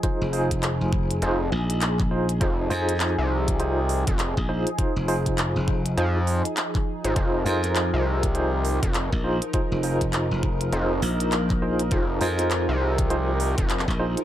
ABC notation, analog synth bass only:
X:1
M:4/4
L:1/16
Q:"Swing 16ths" 1/4=101
K:Fm
V:1 name="Analog synth bass" clef=bass
z8 F,,,2 z6 | F,,,2 z3 C,,6 F,,,2 z3 | z8 F,,3 z4 A,,, | F,,,2 z3 C,,6 F,,,2 z3 |
z8 F,,,2 z6 | F,,,2 z3 C,,6 F,,,2 z3 |]